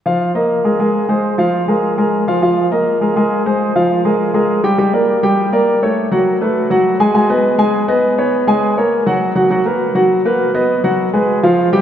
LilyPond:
\new Staff \with { instrumentName = "Grand piano" } { \time 4/4 \key g \phrygian \tempo 4 = 203 <f f' f''>4 <bes bes' ees''>4 <aes aes' bes'>8 <aes aes' bes'>4 <aes aes' c''>8~ | <aes aes' c''>8 <f f' f''>4 <aes aes' bes'>4 <aes aes' bes'>4 <f f' f''>8 | <f f' f''>4 <bes bes' ees''>4 <aes aes' bes'>8 <aes aes' bes'>4 <aes aes' c''>8~ | <aes aes' c''>8 <f f' f''>4 <aes aes' bes'>4 <aes aes' bes'>4 <g g' g''>8 |
<g g' g''>8 <bes bes' d''>4 <g g' g''>4 <bes bes' d''>4 <a a' des''>8~ | <a a' des''>8 <ges ges' ges''>4 <a a' ces''>4 <fis fis' fis''>4 <aes aes' aes''>8 | <aes aes' aes''>8 <ces' ces'' ees''>4 <aes aes' aes''>4 <ces' ces'' ees''>4 <ces' ces'' des''>8~ | <ces' ces'' des''>8 <aes aes' aes''>4 <bes bes' des''>4 <ges ges' ges''>4 <ges ges' ges''>8 |
<fis fis' fis''>8 <ais ais' b'>4 <fis fis' fis''>4 <ais ais' b'>4 <b b' dis''>8~ | <b b' dis''>8 <ges ges' ges''>4 <aes aes' ces''>4 <f f' f''>4 <g g' g''>8 | }